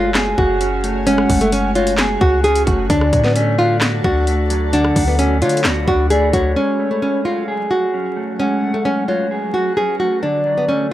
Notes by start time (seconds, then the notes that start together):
Already playing: F#1 G#3 A3 F4 F#4 C#5 F5 G#5
0.14 G#4, snare, clap, closed hi-hat
0.38 F#1 F#4, kick
0.61 C#4, closed hi-hat
0.84 A3, closed hi-hat
1.06 G#3 C#4 F#5, closed hi-hat
1.18 cross-stick
1.30 F#1 A3, kick, closed hi-hat, open hi-hat
1.41 A3, closed hi-hat
1.52 C#4, closed hi-hat
1.75 F4 F#4 C#5, closed hi-hat
1.87 closed hi-hat
1.98 G#4, snare, clap, closed hi-hat
2.21 C#2 F#4, kick
2.44 C#4 G#4, closed hi-hat
2.56 closed hi-hat
2.67 F#1 A3 F#4, kick, closed hi-hat
2.90 D2 D3 D4 A4 D5 A5, kick, closed hi-hat
3.01 cross-stick
3.13 A2 F#3, kick, closed hi-hat
3.24 B3, snare
3.36 A3 C#4, closed hi-hat
3.58 D4 F4 F5
3.81 F#4, snare, clap, closed hi-hat
4.04 D2 D4 F#4, kick
4.27 A3, closed hi-hat
4.50 F#3, closed hi-hat
4.73 D3 D4 F#5 B5, closed hi-hat
4.84 cross-stick
4.96 D2 F#3, kick, open hi-hat
5.08 B3
5.19 A3 C#4, closed hi-hat
5.42 D3 D4 F4 C#5, closed hi-hat
5.49 closed hi-hat
5.57 closed hi-hat
5.64 D2 F#4, snare, clap, closed hi-hat
5.88 D2 D4 F#4, kick
6.10 A3 G#4 D5, closed hi-hat
6.33 D2 F#3 F#4 C#5, kick, closed hi-hat
6.56 F#3 G#3 C#4 G#4 C#5 F#5
6.79 A3
6.91 A3
7.02 C#4
7.25 F4 F#4 F5
7.48 G#4
7.71 F#4
7.94 C#4
8.16 A3
8.39 G#3 C#4 B4 F#5
8.62 A3
8.74 A3
8.85 C#4
9.08 F4 F#4 C#5
9.31 G#4
9.54 F#4
9.77 C#4 G#4
10.00 A3 F#4
10.23 D3 D4 F#4 D5
10.46 F#3
10.57 B3
10.68 A3 C#4